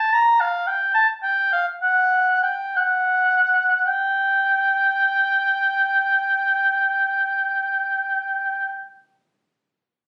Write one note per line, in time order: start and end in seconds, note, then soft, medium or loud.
0.00 0.14 A5 medium
0.13 0.42 A#5 medium
0.40 0.68 F5 medium
0.67 0.94 G5 medium
0.94 1.07 A5 medium
1.23 1.51 G5 medium
1.53 1.66 F5 medium
1.82 2.42 F#5 medium
2.43 2.75 G5 medium
2.76 3.83 F#5 medium
3.86 8.79 G5 medium